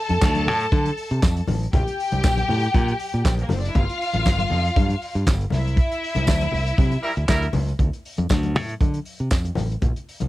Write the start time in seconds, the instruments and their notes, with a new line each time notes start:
Already playing: string section A4 A5
0.09 fingered electric bass F2, closed hi-hat, high conga
0.21 fingered electric bass D2, kick, snare, clap, tambourine, high conga
0.35 closed hi-hat, high conga
0.47 fingered electric bass A2, open hi-hat, low conga
0.60 closed hi-hat
0.72 fingered electric bass D3, kick, closed hi-hat, muted conga, high conga
0.86 closed hi-hat, muted conga
0.97 open hi-hat
1.10 fingered electric bass C3, closed hi-hat
1.23 fingered electric bass F2, kick, snare, clap, tambourine, muted conga, high conga
1.37 closed hi-hat
1.47 fingered electric bass A1, open hi-hat, high conga, low conga
1.63 closed hi-hat
1.73 fingered electric bass A#1, string section G4 G5, kick, closed hi-hat, low conga
1.87 closed hi-hat, muted conga
2.00 open hi-hat
2.12 fingered electric bass C2, closed hi-hat, high conga
2.23 fingered electric bass A#1, kick, snare, clap, tambourine, high conga
2.37 closed hi-hat, high conga
2.48 fingered electric bass A2, open hi-hat, low conga
2.63 closed hi-hat
2.75 fingered electric bass A#2, kick, closed hi-hat, muted conga, high conga
2.88 closed hi-hat
3.00 open hi-hat
3.13 fingered electric bass A#2, closed hi-hat
3.25 fingered electric bass A#1, kick, snare, clap, tambourine, high conga
3.38 closed hi-hat, muted conga
3.42 string section A#3 A#4
3.49 fingered electric bass F#1, string section C4 C5, snare, open hi-hat, high conga, low conga
3.59 string section D4 D5
3.65 string section E4 E5, closed hi-hat
3.75 fingered electric bass G1, string section F4 F5, kick, closed hi-hat, low conga
3.89 closed hi-hat
4.01 open hi-hat
4.13 fingered electric bass A1, closed hi-hat, high conga
4.26 fingered electric bass G1, kick, snare, clap, tambourine, high conga
4.38 closed hi-hat, muted conga, high conga
4.50 fingered electric bass F2, open hi-hat, low conga
4.65 closed hi-hat
4.76 fingered electric bass G2, kick, closed hi-hat, muted conga, high conga
4.89 closed hi-hat, muted conga
5.02 open hi-hat
5.15 fingered electric bass G2, closed hi-hat
5.26 fingered electric bass G1, kick, snare, clap, tambourine, muted conga, high conga
5.41 closed hi-hat
5.50 fingered electric bass C2, string section E4 E5, snare, open hi-hat, high conga, low conga
5.67 closed hi-hat
5.76 kick, closed hi-hat, muted conga
5.92 closed hi-hat
6.04 open hi-hat
6.15 fingered electric bass C2, closed hi-hat, high conga
6.27 fingered electric bass D2, kick, snare, clap, tambourine, muted conga, high conga
6.41 closed hi-hat, high conga
6.52 fingered electric bass C2, open hi-hat, low conga
6.67 closed hi-hat
6.78 fingered electric bass C3, kick, closed hi-hat, muted conga, high conga
6.91 closed hi-hat, muted conga
7.03 horn section G3 E4 A#4, open hi-hat
7.16 fingered electric bass D2, closed hi-hat
7.28 fingered electric bass D2, horn section G3 E4 A#4, kick, snare, clap, tambourine, muted conga, high conga
7.42 closed hi-hat
7.53 fingered electric bass C#2, open hi-hat, high conga, low conga
7.69 closed hi-hat
7.79 fingered electric bass D2, kick, closed hi-hat, muted conga, low conga
7.93 closed hi-hat
8.05 open hi-hat
8.17 fingered electric bass F2, closed hi-hat, high conga
8.29 fingered electric bass D2, kick, snare, clap, tambourine, muted conga, high conga
8.43 closed hi-hat, high conga
8.55 fingered electric bass A2, open hi-hat, low conga
8.69 closed hi-hat
8.81 fingered electric bass D3, kick, closed hi-hat, muted conga, high conga
8.94 closed hi-hat
9.05 open hi-hat
9.19 fingered electric bass C3, closed hi-hat
9.31 fingered electric bass F2, kick, snare, clap, tambourine, muted conga
9.45 closed hi-hat, muted conga
9.55 fingered electric bass A1, snare, open hi-hat, high conga, low conga
9.72 closed hi-hat
9.82 fingered electric bass A#1, kick, closed hi-hat, muted conga, low conga
9.96 closed hi-hat
10.09 open hi-hat
10.20 fingered electric bass C2, closed hi-hat, high conga